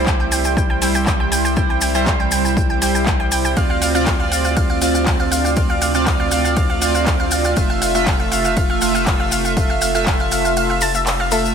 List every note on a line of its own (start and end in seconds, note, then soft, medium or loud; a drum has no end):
0.00 3.54 C2 medium
0.00 11.53 C3 medium
0.00 0.79 G3 loud
0.00 3.53 G3 medium
0.00 0.79 E4 medium
0.00 3.53 E4 medium
0.00 3.53 G4 medium
0.00 0.79 C5 loud
0.06 0.11 G5 medium
0.06 kick loud
0.06 clap loud
0.06 cabasa soft
0.20 0.26 G5 medium
0.32 0.38 G5 medium
0.32 open hi-hat loud
0.32 cabasa medium
0.44 0.48 G5 medium
0.44 cabasa medium
0.57 0.63 G5 medium
0.57 kick loud
0.57 cabasa soft
0.70 0.76 G5 medium
0.82 1.54 G3 medium
0.82 1.54 E4 medium
0.82 1.54 C5 loud
0.82 0.86 G5 medium
0.82 open hi-hat loud
0.82 cabasa medium
0.95 1.01 G5 medium
0.95 cabasa medium
1.06 1.13 G5 medium
1.06 kick loud
1.06 clap loud
1.06 cabasa soft
1.20 1.23 G5 medium
1.32 1.38 G5 medium
1.32 open hi-hat loud
1.32 cabasa loud
1.45 1.51 G5 medium
1.45 cabasa medium
1.56 1.92 G3 medium
1.56 1.92 E4 medium
1.56 1.92 C5 medium
1.56 1.60 G5 medium
1.56 kick loud
1.56 cabasa soft
1.70 1.76 G5 medium
1.81 1.88 G5 medium
1.81 open hi-hat loud
1.81 cabasa medium
1.95 2.79 G3 loud
1.95 2.79 E4 medium
1.95 2.79 C5 loud
1.95 1.98 G5 medium
1.95 cabasa medium
2.06 2.13 G5 medium
2.06 kick loud
2.06 clap loud
2.06 cabasa soft
2.20 2.26 G5 medium
2.31 2.35 G5 medium
2.31 open hi-hat loud
2.31 cabasa loud
2.45 2.51 G5 medium
2.45 cabasa soft
2.57 2.63 G5 medium
2.57 kick loud
2.57 cabasa soft
2.70 2.73 G5 medium
2.82 3.54 G3 medium
2.82 3.54 E4 medium
2.82 3.54 C5 loud
2.82 2.88 G5 medium
2.82 open hi-hat loud
2.82 cabasa loud
2.95 3.01 G5 medium
2.95 cabasa medium
3.06 3.10 G5 medium
3.06 kick loud
3.06 clap loud
3.06 cabasa soft
3.20 3.26 G5 medium
3.32 3.38 G5 medium
3.32 open hi-hat loud
3.32 cabasa medium
3.45 3.48 G5 medium
3.45 cabasa medium
3.57 7.54 D2 medium
3.57 11.53 A3 medium
3.57 3.92 C4 medium
3.57 7.53 D4 medium
3.57 3.92 F4 medium
3.57 11.53 F4 medium
3.57 3.92 D5 medium
3.57 3.61 F5 medium
3.57 kick loud
3.57 ride medium
3.57 cabasa soft
3.70 3.76 F5 medium
3.82 3.88 F5 medium
3.82 open hi-hat loud
3.82 cabasa medium
3.95 4.79 C4 loud
3.95 4.79 F4 medium
3.95 4.79 D5 loud
3.95 3.98 F5 medium
3.95 cabasa medium
4.06 4.13 F5 medium
4.06 kick loud
4.06 clap loud
4.06 ride medium
4.06 cabasa soft
4.20 4.25 F5 medium
4.32 4.35 F5 medium
4.32 open hi-hat medium
4.32 cabasa medium
4.44 4.50 F5 medium
4.44 cabasa soft
4.57 4.63 F5 medium
4.57 kick loud
4.57 ride medium
4.57 cabasa soft
4.70 4.73 F5 medium
4.82 5.54 C4 medium
4.82 5.54 F4 medium
4.82 5.54 D5 loud
4.82 4.88 F5 medium
4.82 open hi-hat loud
4.82 cabasa medium
4.95 5.00 F5 medium
4.95 cabasa medium
5.06 5.10 F5 medium
5.06 kick loud
5.06 clap loud
5.06 ride medium
5.06 cabasa soft
5.20 5.25 F5 medium
5.32 5.38 F5 medium
5.32 open hi-hat loud
5.32 cabasa loud
5.45 5.48 F5 medium
5.45 cabasa medium
5.56 5.92 C4 medium
5.56 5.92 F4 medium
5.56 5.92 D5 medium
5.56 5.63 F5 medium
5.56 kick loud
5.56 ride medium
5.56 cabasa soft
5.70 5.75 F5 medium
5.82 5.85 F5 medium
5.82 open hi-hat loud
5.82 cabasa medium
5.94 6.79 C4 medium
5.94 6.79 F4 medium
5.94 6.79 D5 loud
5.94 6.00 F5 medium
5.94 cabasa soft
6.06 6.13 F5 medium
6.06 kick loud
6.06 clap loud
6.06 ride medium
6.06 cabasa soft
6.20 6.23 F5 medium
6.31 6.38 F5 medium
6.31 open hi-hat medium
6.31 cabasa medium
6.45 6.50 F5 medium
6.45 cabasa medium
6.57 6.60 F5 medium
6.57 kick loud
6.57 ride medium
6.57 cabasa soft
6.70 6.75 F5 medium
6.82 7.54 C4 medium
6.82 7.54 F4 medium
6.82 7.54 D5 loud
6.82 6.88 F5 medium
6.82 open hi-hat loud
6.82 cabasa loud
6.95 6.98 F5 medium
6.95 cabasa medium
7.06 7.13 F5 medium
7.06 kick loud
7.06 clap loud
7.06 ride medium
7.06 cabasa soft
7.20 7.25 F5 medium
7.31 7.36 F5 medium
7.31 open hi-hat medium
7.31 cabasa medium
7.44 7.51 F5 medium
7.44 cabasa medium
7.56 11.54 F1 medium
7.56 7.92 A3 medium
7.56 7.92 F4 medium
7.56 7.92 E5 medium
7.56 11.53 E5 medium
7.56 7.63 F5 medium
7.56 kick loud
7.56 ride medium
7.56 cabasa soft
7.70 7.73 F5 medium
7.82 7.88 F5 medium
7.82 open hi-hat loud
7.82 cabasa medium
7.95 8.79 A3 loud
7.95 8.79 F4 medium
7.95 8.79 E5 loud
7.95 8.01 F5 medium
7.95 cabasa soft
8.06 8.10 F5 medium
8.06 kick loud
8.06 clap loud
8.06 ride medium
8.06 cabasa soft
8.20 8.25 F5 medium
8.32 8.38 F5 medium
8.32 open hi-hat medium
8.32 cabasa medium
8.45 8.48 F5 medium
8.45 cabasa medium
8.57 8.63 F5 medium
8.57 kick loud
8.57 ride medium
8.57 cabasa soft
8.70 8.75 F5 medium
8.81 9.54 A3 medium
8.81 9.54 F4 medium
8.81 9.54 E5 loud
8.81 8.85 F5 medium
8.81 open hi-hat loud
8.81 cabasa medium
8.95 9.00 F5 medium
8.95 cabasa medium
9.06 9.13 F5 medium
9.06 kick loud
9.06 clap loud
9.06 ride medium
9.06 cabasa soft
9.20 9.23 F5 medium
9.32 9.38 F5 medium
9.32 open hi-hat medium
9.32 cabasa medium
9.45 9.50 F5 medium
9.45 cabasa soft
9.57 9.92 A3 medium
9.57 9.92 F4 medium
9.57 9.92 E5 medium
9.57 9.60 F5 medium
9.57 kick loud
9.57 ride medium
9.57 cabasa soft
9.70 9.76 F5 medium
9.81 9.88 F5 medium
9.81 open hi-hat loud
9.81 cabasa medium
9.95 10.79 A3 loud
9.95 10.79 F4 medium
9.95 10.79 E5 loud
9.95 9.98 F5 medium
9.95 cabasa soft
10.06 10.13 F5 medium
10.06 kick loud
10.06 clap loud
10.06 ride medium
10.06 cabasa soft
10.20 10.26 F5 medium
10.31 10.35 F5 medium
10.31 open hi-hat medium
10.31 cabasa medium
10.45 10.51 F5 medium
10.45 cabasa soft
10.56 10.63 F5 medium
10.56 ride medium
10.56 cabasa soft
10.70 10.73 F5 medium
10.81 10.85 A5 loud
10.81 open hi-hat loud
10.81 cabasa medium
10.94 11.01 E5 medium
10.94 cabasa medium
11.07 clap loud
11.07 ride medium
11.07 cabasa soft
11.20 11.26 F5 medium
11.31 11.54 A3 medium
11.31 11.54 F4 medium
11.31 11.38 A4 medium
11.31 11.54 E5 medium
11.31 open hi-hat medium
11.31 cabasa medium
11.45 cabasa soft